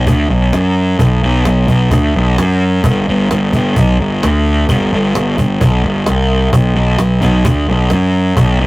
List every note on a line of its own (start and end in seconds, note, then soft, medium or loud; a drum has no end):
0.07 0.27 D2 medium
0.07 cajon bass loud
0.30 0.50 B1 medium
0.30 cajon slap soft
0.53 0.94 F#2 medium
0.53 cajon slap loud
0.76 cajon slap soft
0.99 1.20 B1 medium
0.99 cajon bass loud
1.22 1.44 B1 medium
1.22 cajon slap soft
1.45 1.67 B1 medium
1.45 cajon slap loud
1.68 1.89 B1 medium
1.68 cajon bass medium
1.91 2.12 D2 medium
1.91 cajon bass loud
2.15 2.36 B1 medium
2.15 cajon slap soft
2.38 2.79 F#2 medium
2.38 cajon slap loud
2.61 cajon slap soft
2.84 3.04 G1 medium
2.84 cajon bass loud
3.08 3.28 G1 medium
3.08 cajon slap soft
3.31 3.51 G1 medium
3.31 cajon slap loud
3.53 3.74 G1 medium
3.53 cajon bass medium
3.76 3.97 B1 medium
3.76 cajon bass loud
4.00 4.20 G1 medium
4.00 cajon slap soft
4.23 4.64 D2 medium
4.23 cajon slap loud
4.46 cajon slap soft
4.69 4.89 G1 medium
4.69 cajon bass medium
4.92 5.13 G1 medium
4.92 cajon slap soft
5.15 5.35 G1 medium
5.15 cajon slap loud
5.38 5.58 G1 medium
5.38 cajon bass medium
5.61 5.81 B1 medium
5.61 cajon bass loud
5.84 6.04 G1 medium
5.84 cajon slap soft
6.06 6.48 C2 medium
6.06 cajon slap loud
6.30 cajon slap soft
6.53 6.73 B1 medium
6.53 cajon bass loud
6.76 6.96 B1 medium
6.76 cajon slap soft
6.98 7.20 B1 medium
6.98 cajon slap loud
7.22 7.42 B1 medium
7.22 cajon bass medium
7.45 7.65 D2 medium
7.45 cajon bass loud
7.68 7.88 B1 medium
7.68 cajon slap soft
7.90 8.32 F#2 medium
7.90 cajon slap loud
8.14 cajon slap soft
8.37 8.57 B1 medium
8.37 cajon bass loud
8.59 8.67 B1 medium
8.59 cajon slap soft